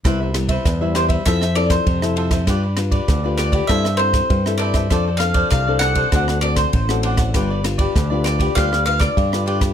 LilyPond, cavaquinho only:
\new Staff \with { instrumentName = "Cavaquinho" } { \time 4/4 \key c \major \tempo 4 = 99 <g' b' c'' e''>16 <b' c'' e''>16 r16 <b' c'' e''>8 <b' c'' e''>16 <g' b' c'' e''>16 <b' c'' e''>16 <f' a' c'' e''>16 <a' c'' e''>16 r8. <a' c'' e''>16 <f' a' c'' e''>16 <a' c'' e''>16 | <f' g' b' d''>16 <g' b' d''>16 r16 <g' b' d''>8 <g' b' d''>16 <f' g' b' d''>16 <g' b' d''>16 <e' a' c'' e''>16 <a' c'' e''>16 r8. <a' c'' e''>16 <e' a' c'' e''>16 <a' c'' e''>16 | <f' a' c'' d''>16 <a' c'' d''>16 r16 <a' c'' d''>8 <a' c'' d''>16 <f' a' c'' d''>16 <a' c'' d''>16 <d' c'' d'' fis''>16 <c'' d'' fis''>16 r8. <c'' d'' fis''>16 <d' c'' d'' fis''>16 <c'' d'' fis''>16 | <f' g' b' d''>16 <g' b' d''>16 r16 <g' b' d''>8 <g' b' d''>16 <f' g' b' d''>16 <g' b' d''>16 <f' g' b' d''>16 <g' b' d''>16 r8. <g' b' d''>16 <f' g' b' d''>16 <g' b' d''>16 | }